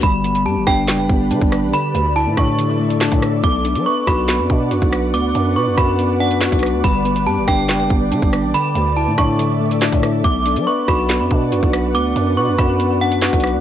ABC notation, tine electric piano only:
X:1
M:4/4
L:1/8
Q:1/4=141
K:Bm
V:1 name="Tine electric piano"
G, B, G D G, B, D2 | D, A, E D D, A, D2 | B, D B F B, D F2 | B, D B F B, D F2 |
G, B, G D G, B, D2 | D, A, E D D, A, D2 | B, D B F B, D F2 | B, D B F B, D F2 |]